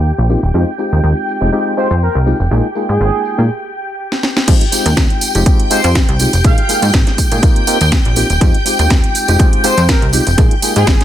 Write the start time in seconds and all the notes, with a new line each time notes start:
Already playing: D#2 G5 G6
0.06 tambourine
0.18 A#1
0.29 A#3 C4 D#4 F4 G4, tambourine
0.43 D#1, tambourine
0.54 F2 G#3 C4 D#4 F4 G4, tambourine
0.78 G#3 C4 D#4 F4 G4, tambourine
0.92 D#2, tambourine
1.03 D#2, tambourine
1.29 tambourine
1.41 F1 G#3 C4 D#4 F4 G4, tambourine
1.52 G#3 C4 D#4 F4 G4, tambourine
1.77 G#3 C4 D#4 F4 G4 C5, tambourine
1.90 F2, tambourine
2.02 A#4, tambourine
2.15 C2
2.26 G#3 C4 D#4 F4 G4, tambourine
2.40 F1, tambourine
2.51 A#1 G#3 A#3 D#4 F4 G#4, tambourine
2.75 G#3 A#3 D#4 F4 G#4, tambourine
2.89 G#2 G#4, tambourine
3.00 G#1, tambourine
3.25 tambourine
3.38 A#2 G#3 A#3 D#4 F4 G#4, tambourine
4.12 snare
4.23 snare
4.37 snare
4.47 F2 G#3 C4 D#4 F4 G4 G5 G6, kick, closed hi-hat, crash, tambourine
4.61 closed hi-hat
4.72 G#3 C4 D#4 F4 G4, open hi-hat, tambourine
4.86 D#2, closed hi-hat, tambourine
4.97 kick, snare, closed hi-hat
5.10 closed hi-hat
5.21 open hi-hat, tambourine
5.35 F1 G#3 C4 D#4 F4 G4, closed hi-hat, tambourine
5.46 G#3 C4 D#4 F4 G4, kick, closed hi-hat
5.60 closed hi-hat
5.70 G#3 C4 D#4 F4 G4 C5, open hi-hat, tambourine
5.84 F2, closed hi-hat, tambourine
5.95 kick, snare, closed hi-hat
6.09 C2, closed hi-hat
6.19 G#3 C4 D#4 F4 G4, open hi-hat, tambourine
6.33 F1, closed hi-hat, tambourine
6.44 A#1 G#3 A#3 D#4 F4 G#4 F5, kick, closed hi-hat
6.58 closed hi-hat
6.68 G#3 A#3 D#4 F4 G#4, open hi-hat, tambourine
6.82 G#2, closed hi-hat, tambourine
6.94 G#1, kick, snare, closed hi-hat
7.07 snare, closed hi-hat
7.18 kick, open hi-hat, tambourine
7.31 A#2 G#3 A#3 D#4 F4 G#4, closed hi-hat, tambourine
7.42 A#3 C4 D#4 F4 G4, kick, closed hi-hat, tambourine
7.56 closed hi-hat
7.67 A#3 C4 D#4 F4 G4, open hi-hat, tambourine
7.81 D#2, closed hi-hat, tambourine
7.92 kick, snare, closed hi-hat
8.05 A#1, closed hi-hat
8.16 A#3 C4 D#4 F4 G4, open hi-hat, tambourine
8.30 D#1, closed hi-hat, tambourine
8.41 F2 G#3 C4 D#4 F4 G4, kick, closed hi-hat, tambourine
8.54 closed hi-hat
8.65 G#3 C4 D#4 F4 G4, open hi-hat, tambourine
8.79 D#2, closed hi-hat, tambourine
8.90 D#2, kick, snare, closed hi-hat
9.04 closed hi-hat
9.15 open hi-hat, tambourine
9.28 F1 G#3 C4 D#4 F4 G4, closed hi-hat, tambourine
9.39 G#3 C4 D#4 F4 G4, kick, closed hi-hat, tambourine
9.53 closed hi-hat
9.64 G#3 C4 D#4 F4 G4 C5, open hi-hat, tambourine
9.77 F2, closed hi-hat, tambourine
9.89 A#4, kick, snare, closed hi-hat
10.02 C2, closed hi-hat
10.13 G#3 C4 D#4 F4 G4, open hi-hat, tambourine
10.27 F1, closed hi-hat, tambourine
10.37 A#1 G#3 A#3 D#4 F4 G#4, kick, closed hi-hat, tambourine
10.51 closed hi-hat
10.62 G#3 A#3 D#4 F4 G#4, open hi-hat, tambourine
10.76 G#2 G#4, closed hi-hat, tambourine
10.87 G#1, kick, snare, closed hi-hat
11.01 snare, closed hi-hat